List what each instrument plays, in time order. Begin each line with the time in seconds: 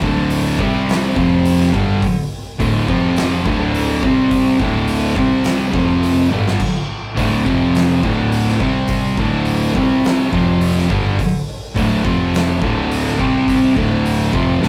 0.01 picked electric bass D1, distorted electric guitar D2 A2 D3, kick
0.30 open hi-hat
0.59 picked electric bass C2, distorted electric guitar C3 G3 C4, kick
0.89 snare, open hi-hat
1.15 picked electric bass F1, distorted electric guitar F2 C3 F3, kick
1.45 open hi-hat
1.63 snare
1.74 picked electric bass G1, distorted electric guitar G2 D3 G3, kick
2.02 kick, open hi-hat
2.59 picked electric bass D1, distorted electric guitar D2 A2 D3, kick, open hi-hat
2.87 picked electric bass F1, distorted electric guitar F2 C3 F3, kick
3.16 snare, open hi-hat
3.45 picked electric bass D1, distorted electric guitar D2 A2 D3, kick
3.74 open hi-hat
4.02 picked electric bass C2, distorted electric guitar C3 G3 C4, kick
4.31 kick, open hi-hat
4.59 picked electric bass D1, distorted electric guitar D2 A2 D3, kick
4.87 open hi-hat
5.16 picked electric bass C2, distorted electric guitar C3 G3 C4, kick
5.44 snare, open hi-hat
5.73 picked electric bass F1, distorted electric guitar F2 C3 F3, kick
6.03 open hi-hat
6.29 picked electric bass G1, distorted electric guitar G2 D3 G3, high tom
6.47 snare
6.60 kick, crash
7.15 picked electric bass D1, distorted electric guitar D2 A2 D3, kick, open hi-hat
7.45 picked electric bass F1, distorted electric guitar F2 C3 F3, kick
7.75 snare, open hi-hat
8.03 picked electric bass D1, distorted electric guitar D2 A2 D3, kick
8.32 open hi-hat
8.48 snare
8.59 picked electric bass C2, distorted electric guitar C3 G3 C4, kick
8.88 kick, open hi-hat
9.17 picked electric bass D1, distorted electric guitar D2 A2 D3, kick
9.45 open hi-hat
9.74 picked electric bass C2, distorted electric guitar C3 G3 C4, kick
10.04 snare, open hi-hat
10.30 picked electric bass F1, distorted electric guitar F2 C3 F3, kick
10.61 open hi-hat
10.79 snare
10.89 picked electric bass G1, distorted electric guitar G2 D3 G3, kick
11.19 kick, open hi-hat
11.75 picked electric bass D1, distorted electric guitar D2 A2 D3, kick, open hi-hat
12.03 picked electric bass F1, distorted electric guitar F2 C3 F3, kick
12.34 snare, open hi-hat
12.61 picked electric bass D1, distorted electric guitar D2 A2 D3, kick
12.91 open hi-hat
13.07 snare
13.18 picked electric bass C2, distorted electric guitar C3 G3 C4, kick
13.48 kick, open hi-hat
13.75 picked electric bass D1, distorted electric guitar D2 A2 D3, kick
14.05 open hi-hat
14.32 picked electric bass F1, distorted electric guitar F2 C3 F3, kick
14.61 picked electric bass D1, distorted electric guitar D2 A2 D3, snare